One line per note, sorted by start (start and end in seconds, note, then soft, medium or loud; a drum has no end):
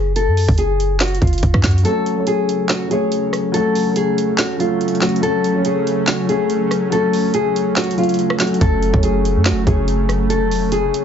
0.00 0.29 F#1 loud
0.00 0.12 G#4 medium
0.16 0.56 A4 loud
0.16 closed hi-hat medium
0.27 0.47 F#2 loud
0.37 open hi-hat medium
0.48 1.19 F#1 loud
0.48 kick loud
0.58 0.98 G#4 loud
0.58 closed hi-hat medium
0.80 closed hi-hat medium
1.00 1.17 F#4 medium
1.00 snare loud
1.00 clap medium
1.00 closed hi-hat soft
1.08 closed hi-hat medium
1.15 closed hi-hat medium
1.22 1.42 F#1 loud
1.22 1.61 F4 medium
1.22 kick medium
1.22 closed hi-hat soft
1.27 closed hi-hat medium
1.33 closed hi-hat medium
1.38 closed hi-hat medium
1.43 1.54 F#1 loud
1.43 kick medium
1.43 closed hi-hat medium
1.54 1.64 F#2 loud
1.54 kick loud
1.54 cross-stick loud
1.64 1.84 F#2 loud
1.64 1.81 F#4 medium
1.64 kick medium
1.64 snare medium
1.64 clap medium
1.64 closed hi-hat medium
1.71 closed hi-hat medium
1.78 closed hi-hat medium
1.83 8.57 C#3 medium
1.83 2.10 F#3 medium
1.83 11.05 F#3 medium
1.83 2.11 A3 medium
1.83 8.57 A3 medium
1.83 11.05 C#4 medium
1.83 2.11 C#4 medium
1.83 2.12 F#4 medium
1.83 2.25 A4 loud
1.83 closed hi-hat medium
1.88 2.13 A4 loud
2.06 closed hi-hat medium
2.15 2.76 F#3 medium
2.15 2.77 A3 medium
2.15 2.77 C#4 medium
2.15 2.78 F#4 medium
2.19 2.79 C#5 medium
2.27 2.67 G#4 medium
2.27 closed hi-hat loud
2.49 closed hi-hat medium
2.69 2.86 F#4 medium
2.69 snare loud
2.69 clap medium
2.69 closed hi-hat medium
2.88 3.42 F#3 medium
2.88 3.42 A3 medium
2.88 3.43 C#4 medium
2.88 3.43 F#4 medium
2.88 3.50 G#4 medium
2.88 closed hi-hat medium
2.93 3.44 C#5 medium
3.12 closed hi-hat medium
3.33 cross-stick medium
3.33 closed hi-hat medium
3.52 4.22 F#3 loud
3.52 4.23 A3 medium
3.52 4.23 C#4 medium
3.52 4.24 F#4 medium
3.52 3.94 A4 loud
3.52 closed hi-hat medium
3.56 4.25 A4 loud
3.75 open hi-hat medium
3.96 4.36 G#4 medium
3.96 closed hi-hat loud
4.18 closed hi-hat medium
4.38 4.55 F#4 medium
4.38 snare loud
4.38 clap medium
4.38 closed hi-hat medium
4.57 4.93 F#3 medium
4.57 4.94 A3 medium
4.57 4.95 C#4 medium
4.57 4.99 F4 medium
4.57 closed hi-hat medium
4.62 4.96 A4 medium
4.81 closed hi-hat medium
4.88 closed hi-hat medium
4.95 closed hi-hat medium
5.00 5.18 F#3 medium
5.00 5.19 A3 medium
5.00 5.20 C#4 medium
5.00 5.19 F#4 medium
5.00 5.20 F#4 medium
5.00 snare medium
5.00 clap medium
5.00 closed hi-hat medium
5.05 5.21 A4 medium
5.09 closed hi-hat medium
5.16 closed hi-hat medium
5.20 5.48 F#3 loud
5.20 5.48 A3 medium
5.20 5.49 C#4 medium
5.20 5.50 F#4 medium
5.20 5.63 A4 loud
5.20 closed hi-hat medium
5.25 5.50 A4 loud
5.44 closed hi-hat medium
5.53 6.15 F#3 medium
5.53 6.15 A3 medium
5.53 6.16 C#4 medium
5.53 6.16 F#4 medium
5.58 6.17 C#5 medium
5.65 6.05 G#4 medium
5.65 closed hi-hat medium
5.87 closed hi-hat medium
6.07 6.24 F#4 medium
6.07 snare loud
6.07 clap loud
6.07 closed hi-hat medium
6.26 6.80 F#3 medium
6.26 6.80 A3 medium
6.26 6.81 C#4 medium
6.26 6.81 F#4 medium
6.26 6.88 G#4 medium
6.26 closed hi-hat medium
6.31 6.82 C#5 medium
6.50 closed hi-hat medium
6.71 cross-stick medium
6.71 closed hi-hat medium
6.90 7.60 F#3 loud
6.90 7.61 A3 medium
6.90 7.61 C#4 medium
6.90 7.62 F#4 medium
6.90 7.32 A4 loud
6.90 closed hi-hat medium
6.95 7.63 A4 loud
7.13 open hi-hat medium
7.34 7.74 G#4 medium
7.34 closed hi-hat loud
7.56 closed hi-hat medium
7.76 7.93 F#4 medium
7.76 snare loud
7.76 clap medium
7.76 closed hi-hat soft
7.84 closed hi-hat medium
7.91 closed hi-hat medium
7.96 8.32 F#3 medium
7.96 8.32 A3 medium
7.96 8.33 C#4 medium
7.96 8.38 F4 medium
7.96 closed hi-hat soft
8.00 8.34 A4 medium
8.00 closed hi-hat medium
8.09 closed hi-hat medium
8.14 closed hi-hat medium
8.19 closed hi-hat medium
8.30 cross-stick loud
8.38 8.56 F#3 medium
8.38 8.57 A3 medium
8.38 8.57 C#4 medium
8.38 8.57 F#4 medium
8.38 8.58 F#4 medium
8.38 snare medium
8.38 clap medium
8.38 closed hi-hat medium
8.42 8.59 A4 medium
8.47 closed hi-hat medium
8.54 closed hi-hat medium
8.59 8.92 F#1 loud
8.59 11.05 C#3 medium
8.59 8.86 F#3 loud
8.59 8.87 A3 medium
8.59 11.05 A3 medium
8.59 8.88 C#4 medium
8.59 8.88 F#4 medium
8.59 9.01 A4 loud
8.59 kick loud
8.59 closed hi-hat medium
8.64 8.89 A4 loud
8.83 closed hi-hat medium
8.91 9.37 F#1 loud
8.91 9.52 F#3 medium
8.91 9.53 A3 medium
8.91 9.53 C#4 medium
8.91 9.54 F#4 medium
8.91 kick loud
8.96 9.55 C#5 medium
9.03 9.43 G#4 medium
9.03 closed hi-hat medium
9.25 closed hi-hat medium
9.36 9.53 F#2 loud
9.46 9.62 F#4 medium
9.46 snare loud
9.46 clap medium
9.46 closed hi-hat medium
9.51 9.66 F#1 loud
9.64 10.32 F#1 loud
9.64 10.18 F#3 medium
9.64 10.18 A3 medium
9.64 10.19 C#4 medium
9.64 10.19 F#4 medium
9.64 10.26 G#4 medium
9.64 kick medium
9.64 closed hi-hat medium
9.69 10.20 C#5 medium
9.88 closed hi-hat medium
10.09 cross-stick medium
10.09 closed hi-hat medium
10.30 10.90 F1 loud
10.30 10.70 A4 loud
10.30 closed hi-hat medium
10.51 open hi-hat medium
10.72 11.05 G#4 medium
10.72 closed hi-hat medium
10.94 closed hi-hat medium